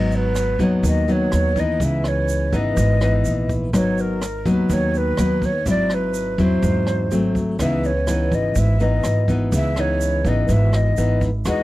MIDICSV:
0, 0, Header, 1, 5, 480
1, 0, Start_track
1, 0, Tempo, 482703
1, 1794, Time_signature, 4, 2, 24, 8
1, 11566, End_track
2, 0, Start_track
2, 0, Title_t, "Flute"
2, 0, Program_c, 0, 73
2, 0, Note_on_c, 0, 75, 77
2, 151, Note_on_c, 0, 71, 74
2, 166, Note_off_c, 0, 75, 0
2, 625, Note_on_c, 0, 73, 68
2, 640, Note_off_c, 0, 71, 0
2, 849, Note_off_c, 0, 73, 0
2, 872, Note_on_c, 0, 75, 85
2, 1106, Note_on_c, 0, 73, 89
2, 1121, Note_off_c, 0, 75, 0
2, 1587, Note_on_c, 0, 75, 89
2, 1602, Note_off_c, 0, 73, 0
2, 1826, Note_on_c, 0, 76, 94
2, 1841, Note_off_c, 0, 75, 0
2, 2067, Note_on_c, 0, 73, 91
2, 2082, Note_off_c, 0, 76, 0
2, 2546, Note_on_c, 0, 75, 87
2, 2560, Note_off_c, 0, 73, 0
2, 3489, Note_off_c, 0, 75, 0
2, 3736, Note_on_c, 0, 73, 83
2, 3984, Note_on_c, 0, 70, 76
2, 3999, Note_off_c, 0, 73, 0
2, 4459, Note_on_c, 0, 71, 75
2, 4474, Note_off_c, 0, 70, 0
2, 4705, Note_on_c, 0, 73, 91
2, 4720, Note_off_c, 0, 71, 0
2, 4943, Note_on_c, 0, 71, 93
2, 4958, Note_off_c, 0, 73, 0
2, 5420, Note_on_c, 0, 73, 85
2, 5435, Note_off_c, 0, 71, 0
2, 5646, Note_off_c, 0, 73, 0
2, 5662, Note_on_c, 0, 74, 93
2, 5905, Note_on_c, 0, 71, 86
2, 5920, Note_off_c, 0, 74, 0
2, 6384, Note_on_c, 0, 72, 78
2, 6398, Note_off_c, 0, 71, 0
2, 7328, Note_off_c, 0, 72, 0
2, 7572, Note_on_c, 0, 76, 90
2, 7814, Note_on_c, 0, 73, 84
2, 7829, Note_off_c, 0, 76, 0
2, 8297, Note_on_c, 0, 75, 76
2, 8312, Note_off_c, 0, 73, 0
2, 8537, Note_on_c, 0, 76, 83
2, 8552, Note_off_c, 0, 75, 0
2, 8776, Note_on_c, 0, 75, 79
2, 8791, Note_off_c, 0, 76, 0
2, 9245, Note_off_c, 0, 75, 0
2, 9504, Note_on_c, 0, 76, 93
2, 9744, Note_on_c, 0, 73, 89
2, 9759, Note_off_c, 0, 76, 0
2, 10222, Note_on_c, 0, 75, 79
2, 10237, Note_off_c, 0, 73, 0
2, 10453, Note_on_c, 0, 76, 85
2, 10468, Note_off_c, 0, 75, 0
2, 10696, Note_on_c, 0, 75, 75
2, 10711, Note_off_c, 0, 76, 0
2, 11166, Note_off_c, 0, 75, 0
2, 11422, Note_on_c, 0, 75, 92
2, 11566, Note_off_c, 0, 75, 0
2, 11566, End_track
3, 0, Start_track
3, 0, Title_t, "Nylon-string guitar"
3, 0, Program_c, 1, 24
3, 0, Note_on_c, 1, 44, 51
3, 0, Note_on_c, 1, 54, 56
3, 0, Note_on_c, 1, 59, 50
3, 0, Note_on_c, 1, 63, 59
3, 554, Note_off_c, 1, 54, 0
3, 556, Note_off_c, 1, 59, 0
3, 558, Note_off_c, 1, 63, 0
3, 591, Note_on_c, 1, 54, 53
3, 597, Note_on_c, 1, 59, 61
3, 599, Note_on_c, 1, 63, 63
3, 809, Note_off_c, 1, 44, 0
3, 832, Note_on_c, 1, 51, 50
3, 1034, Note_off_c, 1, 54, 0
3, 1036, Note_off_c, 1, 59, 0
3, 1038, Note_off_c, 1, 63, 0
3, 1073, Note_on_c, 1, 54, 51
3, 1080, Note_on_c, 1, 59, 47
3, 1082, Note_on_c, 1, 63, 56
3, 1515, Note_off_c, 1, 54, 0
3, 1517, Note_off_c, 1, 59, 0
3, 1520, Note_off_c, 1, 63, 0
3, 1557, Note_on_c, 1, 52, 58
3, 1560, Note_on_c, 1, 59, 57
3, 1566, Note_on_c, 1, 63, 54
3, 1769, Note_off_c, 1, 51, 0
3, 1799, Note_on_c, 1, 49, 52
3, 2477, Note_off_c, 1, 52, 0
3, 2479, Note_off_c, 1, 59, 0
3, 2480, Note_off_c, 1, 63, 0
3, 2516, Note_on_c, 1, 52, 61
3, 2519, Note_on_c, 1, 59, 63
3, 2522, Note_on_c, 1, 63, 67
3, 2732, Note_off_c, 1, 49, 0
3, 2754, Note_on_c, 1, 44, 51
3, 2956, Note_off_c, 1, 52, 0
3, 2957, Note_off_c, 1, 59, 0
3, 2959, Note_off_c, 1, 63, 0
3, 2992, Note_on_c, 1, 52, 54
3, 2998, Note_on_c, 1, 59, 57
3, 3001, Note_on_c, 1, 63, 56
3, 3675, Note_off_c, 1, 52, 0
3, 3675, Note_off_c, 1, 59, 0
3, 3678, Note_off_c, 1, 63, 0
3, 3689, Note_off_c, 1, 44, 0
3, 3710, Note_on_c, 1, 44, 50
3, 3713, Note_on_c, 1, 54, 56
3, 3715, Note_on_c, 1, 59, 55
3, 3719, Note_on_c, 1, 63, 60
3, 4189, Note_off_c, 1, 54, 0
3, 4191, Note_off_c, 1, 59, 0
3, 4192, Note_off_c, 1, 63, 0
3, 4432, Note_on_c, 1, 54, 58
3, 4437, Note_on_c, 1, 59, 54
3, 4441, Note_on_c, 1, 63, 60
3, 4647, Note_off_c, 1, 44, 0
3, 4675, Note_on_c, 1, 51, 56
3, 5113, Note_off_c, 1, 54, 0
3, 5116, Note_off_c, 1, 59, 0
3, 5117, Note_off_c, 1, 63, 0
3, 5158, Note_on_c, 1, 54, 48
3, 5165, Note_on_c, 1, 59, 52
3, 5167, Note_on_c, 1, 63, 63
3, 5464, Note_off_c, 1, 54, 0
3, 5466, Note_off_c, 1, 59, 0
3, 5468, Note_off_c, 1, 63, 0
3, 5609, Note_off_c, 1, 51, 0
3, 5634, Note_on_c, 1, 44, 50
3, 5636, Note_on_c, 1, 54, 54
3, 5643, Note_on_c, 1, 60, 56
3, 5647, Note_on_c, 1, 64, 54
3, 6315, Note_off_c, 1, 54, 0
3, 6317, Note_off_c, 1, 60, 0
3, 6321, Note_off_c, 1, 64, 0
3, 6351, Note_on_c, 1, 54, 62
3, 6358, Note_on_c, 1, 60, 56
3, 6360, Note_on_c, 1, 64, 60
3, 6570, Note_off_c, 1, 44, 0
3, 6599, Note_on_c, 1, 44, 56
3, 7034, Note_off_c, 1, 54, 0
3, 7035, Note_off_c, 1, 60, 0
3, 7038, Note_off_c, 1, 64, 0
3, 7051, Note_off_c, 1, 44, 0
3, 7077, Note_on_c, 1, 54, 53
3, 7082, Note_on_c, 1, 57, 48
3, 7087, Note_on_c, 1, 60, 57
3, 7516, Note_off_c, 1, 54, 0
3, 7519, Note_off_c, 1, 57, 0
3, 7521, Note_off_c, 1, 60, 0
3, 7560, Note_on_c, 1, 49, 51
3, 7562, Note_on_c, 1, 52, 51
3, 7569, Note_on_c, 1, 59, 56
3, 7570, Note_on_c, 1, 63, 59
3, 7866, Note_off_c, 1, 52, 0
3, 7867, Note_off_c, 1, 59, 0
3, 7870, Note_off_c, 1, 63, 0
3, 8032, Note_on_c, 1, 52, 54
3, 8035, Note_on_c, 1, 59, 46
3, 8042, Note_on_c, 1, 63, 57
3, 8493, Note_off_c, 1, 49, 0
3, 8517, Note_on_c, 1, 44, 51
3, 8714, Note_off_c, 1, 52, 0
3, 8716, Note_off_c, 1, 59, 0
3, 8718, Note_off_c, 1, 63, 0
3, 8753, Note_on_c, 1, 52, 51
3, 8757, Note_on_c, 1, 59, 51
3, 8761, Note_on_c, 1, 63, 60
3, 9195, Note_off_c, 1, 52, 0
3, 9197, Note_off_c, 1, 59, 0
3, 9199, Note_off_c, 1, 63, 0
3, 9231, Note_on_c, 1, 52, 57
3, 9238, Note_on_c, 1, 59, 55
3, 9244, Note_on_c, 1, 63, 62
3, 9452, Note_off_c, 1, 44, 0
3, 9477, Note_on_c, 1, 49, 55
3, 9675, Note_off_c, 1, 52, 0
3, 9677, Note_off_c, 1, 59, 0
3, 9681, Note_off_c, 1, 63, 0
3, 9718, Note_on_c, 1, 52, 54
3, 9723, Note_on_c, 1, 59, 51
3, 9725, Note_on_c, 1, 63, 57
3, 10159, Note_off_c, 1, 52, 0
3, 10159, Note_off_c, 1, 59, 0
3, 10162, Note_off_c, 1, 63, 0
3, 10201, Note_on_c, 1, 52, 54
3, 10204, Note_on_c, 1, 59, 57
3, 10207, Note_on_c, 1, 63, 58
3, 10412, Note_off_c, 1, 49, 0
3, 10441, Note_on_c, 1, 44, 55
3, 10881, Note_off_c, 1, 52, 0
3, 10881, Note_off_c, 1, 59, 0
3, 10883, Note_off_c, 1, 63, 0
3, 10915, Note_on_c, 1, 52, 50
3, 10919, Note_on_c, 1, 59, 52
3, 10921, Note_on_c, 1, 63, 57
3, 11225, Note_off_c, 1, 52, 0
3, 11227, Note_off_c, 1, 59, 0
3, 11228, Note_off_c, 1, 63, 0
3, 11375, Note_off_c, 1, 44, 0
3, 11393, Note_on_c, 1, 56, 55
3, 11398, Note_on_c, 1, 52, 53
3, 11402, Note_on_c, 1, 63, 54
3, 11405, Note_on_c, 1, 66, 55
3, 11566, Note_off_c, 1, 52, 0
3, 11566, Note_off_c, 1, 56, 0
3, 11566, Note_off_c, 1, 63, 0
3, 11566, Note_off_c, 1, 66, 0
3, 11566, End_track
4, 0, Start_track
4, 0, Title_t, "Upright bass"
4, 0, Program_c, 2, 32
4, 0, Note_on_c, 2, 32, 81
4, 550, Note_off_c, 2, 32, 0
4, 587, Note_on_c, 2, 39, 70
4, 813, Note_off_c, 2, 39, 0
4, 828, Note_on_c, 2, 39, 88
4, 1277, Note_off_c, 2, 39, 0
4, 1320, Note_on_c, 2, 39, 78
4, 1763, Note_off_c, 2, 39, 0
4, 1791, Note_on_c, 2, 37, 76
4, 2473, Note_off_c, 2, 37, 0
4, 2511, Note_on_c, 2, 32, 80
4, 2735, Note_off_c, 2, 32, 0
4, 2753, Note_on_c, 2, 32, 94
4, 3200, Note_off_c, 2, 32, 0
4, 3237, Note_on_c, 2, 34, 78
4, 3682, Note_off_c, 2, 34, 0
4, 3715, Note_on_c, 2, 32, 84
4, 4394, Note_off_c, 2, 32, 0
4, 4431, Note_on_c, 2, 39, 81
4, 4655, Note_off_c, 2, 39, 0
4, 4671, Note_on_c, 2, 39, 87
4, 5118, Note_off_c, 2, 39, 0
4, 5152, Note_on_c, 2, 39, 72
4, 5599, Note_off_c, 2, 39, 0
4, 5630, Note_on_c, 2, 32, 81
4, 6311, Note_off_c, 2, 32, 0
4, 6347, Note_on_c, 2, 40, 73
4, 6572, Note_off_c, 2, 40, 0
4, 6588, Note_on_c, 2, 40, 94
4, 7036, Note_off_c, 2, 40, 0
4, 7075, Note_on_c, 2, 32, 76
4, 7520, Note_off_c, 2, 32, 0
4, 7552, Note_on_c, 2, 37, 80
4, 8232, Note_off_c, 2, 37, 0
4, 8270, Note_on_c, 2, 32, 74
4, 8494, Note_off_c, 2, 32, 0
4, 8507, Note_on_c, 2, 32, 89
4, 8956, Note_off_c, 2, 32, 0
4, 8997, Note_on_c, 2, 32, 78
4, 9442, Note_off_c, 2, 32, 0
4, 9469, Note_on_c, 2, 37, 78
4, 10153, Note_off_c, 2, 37, 0
4, 10189, Note_on_c, 2, 32, 76
4, 10415, Note_off_c, 2, 32, 0
4, 10430, Note_on_c, 2, 32, 89
4, 10879, Note_off_c, 2, 32, 0
4, 10916, Note_on_c, 2, 32, 79
4, 11363, Note_off_c, 2, 32, 0
4, 11391, Note_on_c, 2, 40, 85
4, 11566, Note_off_c, 2, 40, 0
4, 11566, End_track
5, 0, Start_track
5, 0, Title_t, "Drums"
5, 109, Note_on_c, 9, 42, 24
5, 113, Note_on_c, 9, 82, 24
5, 209, Note_off_c, 9, 42, 0
5, 212, Note_off_c, 9, 82, 0
5, 350, Note_on_c, 9, 37, 48
5, 350, Note_on_c, 9, 42, 40
5, 354, Note_on_c, 9, 82, 57
5, 449, Note_off_c, 9, 37, 0
5, 449, Note_off_c, 9, 42, 0
5, 454, Note_off_c, 9, 82, 0
5, 589, Note_on_c, 9, 36, 50
5, 590, Note_on_c, 9, 42, 25
5, 594, Note_on_c, 9, 82, 22
5, 688, Note_off_c, 9, 36, 0
5, 690, Note_off_c, 9, 42, 0
5, 693, Note_off_c, 9, 82, 0
5, 829, Note_on_c, 9, 36, 51
5, 829, Note_on_c, 9, 42, 36
5, 838, Note_on_c, 9, 82, 61
5, 929, Note_off_c, 9, 36, 0
5, 929, Note_off_c, 9, 42, 0
5, 938, Note_off_c, 9, 82, 0
5, 1070, Note_on_c, 9, 42, 27
5, 1078, Note_on_c, 9, 82, 23
5, 1170, Note_off_c, 9, 42, 0
5, 1178, Note_off_c, 9, 82, 0
5, 1308, Note_on_c, 9, 37, 52
5, 1308, Note_on_c, 9, 42, 41
5, 1317, Note_on_c, 9, 82, 55
5, 1408, Note_off_c, 9, 37, 0
5, 1408, Note_off_c, 9, 42, 0
5, 1416, Note_off_c, 9, 82, 0
5, 1548, Note_on_c, 9, 42, 25
5, 1549, Note_on_c, 9, 36, 49
5, 1558, Note_on_c, 9, 82, 23
5, 1648, Note_off_c, 9, 42, 0
5, 1649, Note_off_c, 9, 36, 0
5, 1657, Note_off_c, 9, 82, 0
5, 1788, Note_on_c, 9, 42, 40
5, 1790, Note_on_c, 9, 36, 56
5, 1804, Note_on_c, 9, 82, 56
5, 1887, Note_off_c, 9, 42, 0
5, 1889, Note_off_c, 9, 36, 0
5, 1903, Note_off_c, 9, 82, 0
5, 2027, Note_on_c, 9, 37, 51
5, 2027, Note_on_c, 9, 42, 22
5, 2037, Note_on_c, 9, 82, 24
5, 2126, Note_off_c, 9, 37, 0
5, 2126, Note_off_c, 9, 42, 0
5, 2137, Note_off_c, 9, 82, 0
5, 2267, Note_on_c, 9, 42, 37
5, 2273, Note_on_c, 9, 82, 59
5, 2366, Note_off_c, 9, 42, 0
5, 2372, Note_off_c, 9, 82, 0
5, 2511, Note_on_c, 9, 42, 24
5, 2512, Note_on_c, 9, 36, 51
5, 2515, Note_on_c, 9, 82, 24
5, 2611, Note_off_c, 9, 36, 0
5, 2611, Note_off_c, 9, 42, 0
5, 2615, Note_off_c, 9, 82, 0
5, 2748, Note_on_c, 9, 42, 36
5, 2752, Note_on_c, 9, 36, 50
5, 2756, Note_on_c, 9, 82, 62
5, 2848, Note_off_c, 9, 42, 0
5, 2851, Note_off_c, 9, 36, 0
5, 2855, Note_off_c, 9, 82, 0
5, 2992, Note_on_c, 9, 37, 58
5, 2992, Note_on_c, 9, 42, 25
5, 2994, Note_on_c, 9, 82, 23
5, 3091, Note_off_c, 9, 37, 0
5, 3091, Note_off_c, 9, 42, 0
5, 3093, Note_off_c, 9, 82, 0
5, 3231, Note_on_c, 9, 42, 38
5, 3232, Note_on_c, 9, 82, 58
5, 3331, Note_off_c, 9, 42, 0
5, 3331, Note_off_c, 9, 82, 0
5, 3473, Note_on_c, 9, 42, 24
5, 3474, Note_on_c, 9, 36, 49
5, 3478, Note_on_c, 9, 82, 24
5, 3573, Note_off_c, 9, 36, 0
5, 3573, Note_off_c, 9, 42, 0
5, 3577, Note_off_c, 9, 82, 0
5, 3713, Note_on_c, 9, 36, 55
5, 3715, Note_on_c, 9, 37, 57
5, 3715, Note_on_c, 9, 42, 41
5, 3720, Note_on_c, 9, 82, 57
5, 3812, Note_off_c, 9, 36, 0
5, 3815, Note_off_c, 9, 37, 0
5, 3815, Note_off_c, 9, 42, 0
5, 3819, Note_off_c, 9, 82, 0
5, 3952, Note_on_c, 9, 42, 25
5, 3956, Note_on_c, 9, 82, 24
5, 4052, Note_off_c, 9, 42, 0
5, 4055, Note_off_c, 9, 82, 0
5, 4190, Note_on_c, 9, 37, 55
5, 4190, Note_on_c, 9, 42, 41
5, 4199, Note_on_c, 9, 82, 58
5, 4290, Note_off_c, 9, 37, 0
5, 4290, Note_off_c, 9, 42, 0
5, 4298, Note_off_c, 9, 82, 0
5, 4429, Note_on_c, 9, 42, 26
5, 4430, Note_on_c, 9, 36, 52
5, 4439, Note_on_c, 9, 82, 24
5, 4528, Note_off_c, 9, 42, 0
5, 4530, Note_off_c, 9, 36, 0
5, 4539, Note_off_c, 9, 82, 0
5, 4668, Note_on_c, 9, 42, 41
5, 4669, Note_on_c, 9, 36, 52
5, 4672, Note_on_c, 9, 82, 61
5, 4768, Note_off_c, 9, 42, 0
5, 4769, Note_off_c, 9, 36, 0
5, 4772, Note_off_c, 9, 82, 0
5, 4907, Note_on_c, 9, 42, 28
5, 4916, Note_on_c, 9, 82, 23
5, 5006, Note_off_c, 9, 42, 0
5, 5015, Note_off_c, 9, 82, 0
5, 5142, Note_on_c, 9, 37, 56
5, 5142, Note_on_c, 9, 42, 43
5, 5154, Note_on_c, 9, 82, 59
5, 5242, Note_off_c, 9, 37, 0
5, 5242, Note_off_c, 9, 42, 0
5, 5253, Note_off_c, 9, 82, 0
5, 5383, Note_on_c, 9, 42, 25
5, 5387, Note_on_c, 9, 36, 50
5, 5394, Note_on_c, 9, 82, 24
5, 5483, Note_off_c, 9, 42, 0
5, 5487, Note_off_c, 9, 36, 0
5, 5494, Note_off_c, 9, 82, 0
5, 5625, Note_on_c, 9, 42, 45
5, 5627, Note_on_c, 9, 36, 55
5, 5633, Note_on_c, 9, 82, 55
5, 5724, Note_off_c, 9, 42, 0
5, 5726, Note_off_c, 9, 36, 0
5, 5732, Note_off_c, 9, 82, 0
5, 5861, Note_on_c, 9, 37, 50
5, 5861, Note_on_c, 9, 42, 25
5, 5871, Note_on_c, 9, 82, 25
5, 5961, Note_off_c, 9, 37, 0
5, 5961, Note_off_c, 9, 42, 0
5, 5970, Note_off_c, 9, 82, 0
5, 6101, Note_on_c, 9, 42, 35
5, 6107, Note_on_c, 9, 82, 55
5, 6200, Note_off_c, 9, 42, 0
5, 6206, Note_off_c, 9, 82, 0
5, 6346, Note_on_c, 9, 42, 25
5, 6347, Note_on_c, 9, 36, 50
5, 6350, Note_on_c, 9, 82, 23
5, 6445, Note_off_c, 9, 42, 0
5, 6447, Note_off_c, 9, 36, 0
5, 6449, Note_off_c, 9, 82, 0
5, 6584, Note_on_c, 9, 42, 36
5, 6588, Note_on_c, 9, 36, 50
5, 6594, Note_on_c, 9, 82, 58
5, 6684, Note_off_c, 9, 42, 0
5, 6687, Note_off_c, 9, 36, 0
5, 6694, Note_off_c, 9, 82, 0
5, 6826, Note_on_c, 9, 37, 55
5, 6826, Note_on_c, 9, 42, 25
5, 6836, Note_on_c, 9, 82, 24
5, 6925, Note_off_c, 9, 37, 0
5, 6925, Note_off_c, 9, 42, 0
5, 6935, Note_off_c, 9, 82, 0
5, 7064, Note_on_c, 9, 42, 38
5, 7076, Note_on_c, 9, 82, 58
5, 7164, Note_off_c, 9, 42, 0
5, 7175, Note_off_c, 9, 82, 0
5, 7308, Note_on_c, 9, 42, 23
5, 7309, Note_on_c, 9, 36, 48
5, 7318, Note_on_c, 9, 82, 24
5, 7407, Note_off_c, 9, 42, 0
5, 7408, Note_off_c, 9, 36, 0
5, 7417, Note_off_c, 9, 82, 0
5, 7548, Note_on_c, 9, 37, 53
5, 7548, Note_on_c, 9, 42, 39
5, 7549, Note_on_c, 9, 36, 56
5, 7555, Note_on_c, 9, 82, 56
5, 7647, Note_off_c, 9, 37, 0
5, 7647, Note_off_c, 9, 42, 0
5, 7649, Note_off_c, 9, 36, 0
5, 7655, Note_off_c, 9, 82, 0
5, 7787, Note_on_c, 9, 42, 23
5, 7797, Note_on_c, 9, 82, 25
5, 7887, Note_off_c, 9, 42, 0
5, 7897, Note_off_c, 9, 82, 0
5, 8024, Note_on_c, 9, 37, 53
5, 8024, Note_on_c, 9, 42, 36
5, 8031, Note_on_c, 9, 82, 60
5, 8123, Note_off_c, 9, 37, 0
5, 8123, Note_off_c, 9, 42, 0
5, 8130, Note_off_c, 9, 82, 0
5, 8266, Note_on_c, 9, 42, 25
5, 8270, Note_on_c, 9, 36, 50
5, 8276, Note_on_c, 9, 82, 23
5, 8366, Note_off_c, 9, 42, 0
5, 8369, Note_off_c, 9, 36, 0
5, 8375, Note_off_c, 9, 82, 0
5, 8504, Note_on_c, 9, 42, 40
5, 8506, Note_on_c, 9, 82, 61
5, 8509, Note_on_c, 9, 36, 48
5, 8603, Note_off_c, 9, 42, 0
5, 8606, Note_off_c, 9, 82, 0
5, 8608, Note_off_c, 9, 36, 0
5, 8747, Note_on_c, 9, 42, 28
5, 8750, Note_on_c, 9, 82, 23
5, 8846, Note_off_c, 9, 42, 0
5, 8849, Note_off_c, 9, 82, 0
5, 8983, Note_on_c, 9, 37, 50
5, 8983, Note_on_c, 9, 42, 41
5, 8990, Note_on_c, 9, 82, 57
5, 9082, Note_off_c, 9, 37, 0
5, 9082, Note_off_c, 9, 42, 0
5, 9090, Note_off_c, 9, 82, 0
5, 9223, Note_on_c, 9, 42, 25
5, 9228, Note_on_c, 9, 36, 47
5, 9234, Note_on_c, 9, 82, 22
5, 9322, Note_off_c, 9, 42, 0
5, 9327, Note_off_c, 9, 36, 0
5, 9334, Note_off_c, 9, 82, 0
5, 9464, Note_on_c, 9, 42, 45
5, 9468, Note_on_c, 9, 36, 58
5, 9472, Note_on_c, 9, 82, 59
5, 9564, Note_off_c, 9, 42, 0
5, 9568, Note_off_c, 9, 36, 0
5, 9572, Note_off_c, 9, 82, 0
5, 9705, Note_on_c, 9, 37, 52
5, 9705, Note_on_c, 9, 42, 26
5, 9710, Note_on_c, 9, 82, 26
5, 9805, Note_off_c, 9, 37, 0
5, 9805, Note_off_c, 9, 42, 0
5, 9810, Note_off_c, 9, 82, 0
5, 9946, Note_on_c, 9, 42, 38
5, 9953, Note_on_c, 9, 82, 60
5, 10046, Note_off_c, 9, 42, 0
5, 10053, Note_off_c, 9, 82, 0
5, 10186, Note_on_c, 9, 42, 26
5, 10188, Note_on_c, 9, 36, 52
5, 10195, Note_on_c, 9, 82, 22
5, 10286, Note_off_c, 9, 42, 0
5, 10288, Note_off_c, 9, 36, 0
5, 10295, Note_off_c, 9, 82, 0
5, 10427, Note_on_c, 9, 42, 36
5, 10428, Note_on_c, 9, 82, 59
5, 10429, Note_on_c, 9, 36, 53
5, 10527, Note_off_c, 9, 42, 0
5, 10527, Note_off_c, 9, 82, 0
5, 10529, Note_off_c, 9, 36, 0
5, 10667, Note_on_c, 9, 37, 59
5, 10667, Note_on_c, 9, 42, 26
5, 10672, Note_on_c, 9, 82, 25
5, 10766, Note_off_c, 9, 37, 0
5, 10766, Note_off_c, 9, 42, 0
5, 10771, Note_off_c, 9, 82, 0
5, 10908, Note_on_c, 9, 42, 38
5, 10909, Note_on_c, 9, 82, 60
5, 11007, Note_off_c, 9, 42, 0
5, 11008, Note_off_c, 9, 82, 0
5, 11150, Note_on_c, 9, 36, 50
5, 11150, Note_on_c, 9, 42, 22
5, 11151, Note_on_c, 9, 82, 22
5, 11249, Note_off_c, 9, 36, 0
5, 11249, Note_off_c, 9, 42, 0
5, 11250, Note_off_c, 9, 82, 0
5, 11387, Note_on_c, 9, 82, 58
5, 11388, Note_on_c, 9, 37, 53
5, 11388, Note_on_c, 9, 42, 37
5, 11391, Note_on_c, 9, 36, 54
5, 11486, Note_off_c, 9, 82, 0
5, 11487, Note_off_c, 9, 37, 0
5, 11487, Note_off_c, 9, 42, 0
5, 11490, Note_off_c, 9, 36, 0
5, 11566, End_track
0, 0, End_of_file